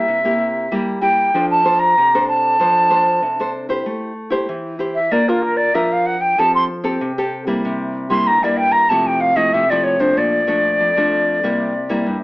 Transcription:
0.00 0.18 A#3 medium
0.00 0.19 E4 medium
0.00 0.19 G4 medium
0.00 0.74 E5 medium
0.08 0.68 C3 medium
0.25 0.66 A#3 medium
0.25 0.67 E4 medium
0.25 0.67 G4 medium
0.71 1.31 G3 medium
0.71 0.98 A#3 medium
0.71 0.98 E4 medium
0.71 0.98 G4 medium
1.01 1.31 A#3 medium
1.01 1.31 E4 medium
1.01 1.31 G4 medium
1.01 1.45 G5 medium
1.34 1.94 F3 medium
1.34 1.61 D4 medium
1.34 1.61 A4 medium
1.34 1.61 C5 medium
1.50 1.80 A5 medium
1.65 1.95 D4 medium
1.65 1.95 A4 medium
1.65 1.95 C5 medium
1.79 2.27 A#5 medium
1.98 2.57 C3 medium
2.15 2.56 D4 medium
2.15 2.56 A4 medium
2.15 2.56 C5 medium
2.28 3.50 A5 medium
2.60 3.20 F3 medium
2.60 2.86 D4 medium
2.60 2.86 A4 medium
2.60 2.87 C5 medium
2.90 3.33 D4 medium
2.90 3.33 A4 medium
2.90 3.33 C5 medium
3.22 3.82 C3 medium
3.40 3.66 D4 medium
3.40 3.66 A4 medium
3.40 3.66 C5 medium
3.69 4.12 E4 medium
3.69 4.12 G4 medium
3.69 4.12 C5 medium
3.86 4.46 A3 medium
4.30 4.74 E4 medium
4.30 4.74 G4 medium
4.30 4.75 C5 medium
4.49 5.09 E3 medium
4.79 4.98 E4 medium
4.79 4.99 G4 medium
4.79 4.99 C5 medium
4.94 5.13 E5 medium
5.11 5.72 A#3 medium
5.11 5.21 D4 medium
5.11 5.21 F4 medium
5.11 5.22 A#4 medium
5.11 5.30 D5 medium
5.28 5.70 D4 medium
5.28 5.44 F4 medium
5.28 5.70 F4 medium
5.28 5.71 A#4 medium
5.42 5.58 A#4 medium
5.56 5.76 D5 medium
5.74 6.35 F3 medium
5.74 6.15 D4 medium
5.74 6.16 F4 medium
5.74 6.16 A#4 medium
5.74 5.93 E5 medium
5.92 6.07 F5 medium
6.06 6.22 F#5 medium
6.20 6.40 G5 medium
6.38 6.98 F3 medium
6.38 6.68 C4 medium
6.38 6.68 G4 medium
6.38 6.68 A4 medium
6.38 6.54 A5 medium
6.54 6.64 C6 medium
6.84 7.11 C4 medium
6.84 7.11 G4 medium
6.84 7.11 A4 medium
7.01 7.61 C3 medium
7.18 7.44 C4 medium
7.18 7.44 G4 medium
7.18 7.44 A4 medium
7.47 8.06 G3 medium
7.47 8.06 A#3 medium
7.47 8.06 E4 medium
7.65 8.24 C3 medium
8.10 8.37 G3 medium
8.10 8.37 A#3 medium
8.10 8.38 E4 medium
8.10 8.28 C6 medium
8.27 8.87 G2 medium
8.27 8.44 A#5 medium
8.43 8.86 G3 medium
8.43 8.86 A#3 medium
8.43 8.86 E4 medium
8.43 8.58 D5 medium
8.57 8.73 G5 loud
8.71 8.90 A#5 medium
8.89 9.50 C3 medium
8.89 9.33 F3 medium
8.89 9.33 A3 medium
8.89 9.33 E4 medium
8.89 9.08 A5 medium
9.06 9.22 G5 medium
9.20 9.37 F5 medium
9.36 9.63 F3 medium
9.36 9.64 A3 medium
9.36 9.64 E4 medium
9.36 9.54 D#5 medium
9.53 10.14 C3 medium
9.53 9.71 E5 loud
9.70 9.97 F3 medium
9.70 9.97 A3 medium
9.70 9.97 E4 medium
9.70 9.85 D5 medium
9.83 10.01 C#5 medium
9.99 10.42 F3 medium
9.99 10.43 A3 medium
9.99 10.43 D4 medium
9.99 10.19 C5 medium
10.17 10.77 A#2 medium
10.17 12.06 D5 medium
10.47 10.90 F3 medium
10.47 10.90 A3 medium
10.47 10.90 D4 medium
10.81 11.40 F2 medium
10.97 11.39 F3 medium
10.97 11.39 A3 medium
10.97 11.39 D4 medium
11.43 12.03 C3 medium
11.43 11.73 G3 medium
11.43 11.73 A#3 medium
11.43 11.73 E4 medium
11.89 12.16 G3 medium
11.89 12.17 A#3 medium
11.89 12.17 E4 medium
12.07 12.23 G2 medium

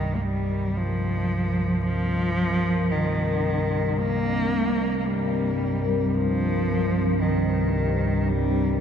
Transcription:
0.00 8.80 C2 medium
0.00 8.80 G2 medium
0.00 0.18 D#3 medium
0.00 8.80 C4 medium
0.00 8.80 A#4 medium
0.00 8.80 D#5 medium
0.16 0.25 A#3 medium
0.23 0.79 G3 medium
0.77 1.84 F3 medium
1.84 2.93 F3 loud
2.92 4.01 D#3 medium
3.99 4.99 A#3 loud
4.99 5.08 A#3 medium
5.06 6.16 G3 medium
6.15 7.23 F3 loud
7.22 8.30 D#3 medium
8.29 8.80 G3 medium

